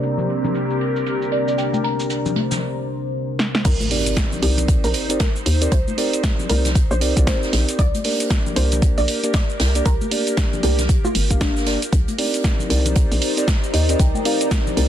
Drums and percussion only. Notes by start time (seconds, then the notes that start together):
0.03 closed hi-hat, shaker
0.18 low conga, shaker
0.30 closed hi-hat
0.44 low conga, shaker
0.55 closed hi-hat, shaker
0.70 shaker
0.81 closed hi-hat
0.96 shaker
1.06 closed hi-hat, shaker
1.22 shaker
1.32 closed hi-hat
1.48 shaker
1.58 closed hi-hat, shaker
1.73 high conga, shaker
1.84 closed hi-hat
2.00 shaker
2.10 closed hi-hat, shaker
2.26 low conga, shaker
2.36 closed hi-hat, high conga
2.51 snare, low conga, shaker
3.39 snare
3.55 snare
3.65 kick, closed hi-hat, crash, shaker
3.80 closed hi-hat, high conga, shaker
3.91 open hi-hat
4.06 closed hi-hat, shaker
4.16 kick, snare, closed hi-hat, shaker
4.32 low conga, shaker
4.42 closed hi-hat, open hi-hat
4.57 closed hi-hat, low conga, shaker
4.68 kick, closed hi-hat, shaker
4.84 open hi-hat, shaker
4.94 closed hi-hat, open hi-hat
5.10 closed hi-hat, shaker
5.20 kick, snare, closed hi-hat, shaker
5.36 shaker
5.46 closed hi-hat, open hi-hat
5.62 closed hi-hat, shaker
5.72 kick, closed hi-hat, shaker
5.88 high conga, shaker
5.98 closed hi-hat, open hi-hat
6.13 closed hi-hat, shaker
6.23 kick, snare, closed hi-hat, shaker
6.39 low conga, shaker
6.49 closed hi-hat, open hi-hat, high conga
6.65 snare, closed hi-hat, low conga, shaker
6.75 kick, closed hi-hat, shaker
6.91 shaker
7.01 closed hi-hat, open hi-hat
7.17 kick, closed hi-hat, shaker
7.27 kick, snare, closed hi-hat, shaker
7.43 snare, shaker
7.53 snare, closed hi-hat, open hi-hat
7.69 closed hi-hat, shaker
7.79 kick, closed hi-hat, shaker
7.94 closed hi-hat, high conga, shaker
8.04 open hi-hat
8.20 closed hi-hat, shaker
8.30 kick, snare, closed hi-hat, shaker
8.46 low conga, shaker
8.56 closed hi-hat, open hi-hat
8.72 closed hi-hat, low conga, shaker
8.82 kick, closed hi-hat, shaker
8.98 open hi-hat, shaker
9.08 closed hi-hat, open hi-hat
9.24 closed hi-hat, shaker
9.34 kick, snare, closed hi-hat, shaker
9.50 shaker
9.60 snare, closed hi-hat, open hi-hat
9.75 closed hi-hat, shaker
9.86 kick, closed hi-hat, shaker
10.01 high conga, shaker
10.11 closed hi-hat, open hi-hat
10.27 closed hi-hat, shaker
10.37 kick, snare, closed hi-hat, shaker
10.53 low conga, shaker
10.63 closed hi-hat, open hi-hat, high conga
10.79 snare, closed hi-hat, low conga, shaker
10.89 kick, closed hi-hat, shaker
11.04 high conga, shaker
11.15 closed hi-hat, open hi-hat
11.31 kick, closed hi-hat, shaker
11.41 kick, snare, closed hi-hat, shaker
11.57 snare, shaker
11.66 snare, closed hi-hat, open hi-hat
11.82 closed hi-hat, shaker
11.93 kick, closed hi-hat, shaker
12.08 closed hi-hat, high conga, shaker
12.18 open hi-hat
12.34 closed hi-hat, shaker
12.44 kick, snare, closed hi-hat, shaker
12.59 low conga, shaker
12.70 closed hi-hat, open hi-hat
12.86 closed hi-hat, low conga, shaker
12.95 kick, closed hi-hat, shaker
13.12 open hi-hat, shaker
13.21 closed hi-hat, open hi-hat
13.37 closed hi-hat, shaker
13.48 kick, snare, closed hi-hat, shaker
13.64 shaker
13.74 closed hi-hat, open hi-hat
13.89 closed hi-hat, shaker
13.99 kick, closed hi-hat, shaker
14.14 high conga, shaker
14.25 closed hi-hat, open hi-hat
14.41 closed hi-hat, shaker
14.51 kick, snare, closed hi-hat, shaker
14.67 low conga, shaker
14.77 closed hi-hat, open hi-hat, high conga